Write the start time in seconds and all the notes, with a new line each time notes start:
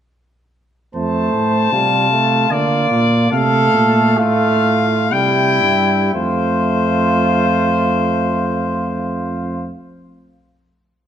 0.95 F2 A3 C5 A5
1.33 A2
1.72 C3 G3 F4
2.11 A3
2.50 D3 A#3 D5
2.91 A#2
3.31 C3 A3 A4 F5
3.73 A#2
4.18 A2 F4 F5
5.11 C3 G3 E4 G5
5.61 G2
6.14 F2 A3 F4 C5